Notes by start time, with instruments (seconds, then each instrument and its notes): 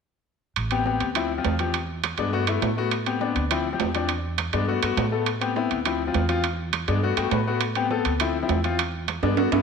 0.56 upright bass A1, high timbale
0.71 grand piano B3 C4 G4, high timbale
0.86 grand piano B3 C4 G4, low timbale
1.00 upright bass D2, high timbale
1.15 grand piano F3 C4 E4, high timbale
1.38 grand piano F3 C4 F4
1.45 upright bass E2, high timbale, low timbale
1.59 grand piano F3 C4 G4, high timbale
1.74 high timbale
2.04 high timbale, low timbale
2.18 upright bass G2, grand piano G#3 B3 D4, high timbale
2.33 grand piano A3 B3 F#4
2.47 grand piano A3 B3 E4, high timbale
2.62 upright bass A2, high timbale, low timbale
2.77 grand piano A3 B3 F#4
2.91 high timbale
3.06 grand piano B3 C4 G4, high timbale
3.21 grand piano B3 C4 D4, low timbale
3.36 upright bass D2, high timbale
3.51 grand piano F3 C4 E4, high timbale
3.73 grand piano F3 C4 G4
3.80 upright bass E2, high timbale, low timbale
3.95 grand piano F3 C4 D4, high timbale
4.09 high timbale
4.38 high timbale, low timbale
4.53 upright bass G2, grand piano G#3 B3 D4, high timbale
4.68 grand piano A3 B3 F#4
4.83 upright bass G2, grand piano A3 B3 F#4, high timbale
4.97 upright bass A2, high timbale, low timbale
5.12 grand piano A3 B3 A4
5.26 high timbale
5.41 grand piano B3 C4 G4, high timbale
5.56 grand piano B3 C4 E4, low timbale
5.71 upright bass D2, high timbale
5.85 grand piano F3 C4 E4, high timbale
6.07 grand piano F3 C4 F4
6.14 upright bass E2, high timbale, low timbale
6.29 grand piano F3 C4 F4, high timbale
6.44 high timbale
6.73 high timbale, low timbale
6.88 upright bass G2, grand piano G#3 B3 D4, high timbale
7.03 grand piano A3 B3 F#4
7.17 upright bass G2, grand piano A3 B3 F#4 G5, high timbale
7.31 upright bass A2, grand piano B4, high timbale, low timbale
7.47 grand piano A3 B3 F#4
7.61 high timbale
7.75 grand piano B3 C4 G4, high timbale
7.91 grand piano B3 C4 A4, low timbale
8.05 upright bass D2, high timbale
8.20 grand piano F3 C4 E4, high timbale
8.42 grand piano F3 C4 E4
8.49 upright bass E2, high timbale, low timbale
8.64 grand piano F3 C4 F4, high timbale
8.79 high timbale
9.08 high timbale, low timbale
9.23 upright bass G2, grand piano G#3 B3 D4, high timbale
9.37 grand piano A3 B3 F#4, high timbale
9.52 upright bass G2, grand piano A3 B3 E4, high timbale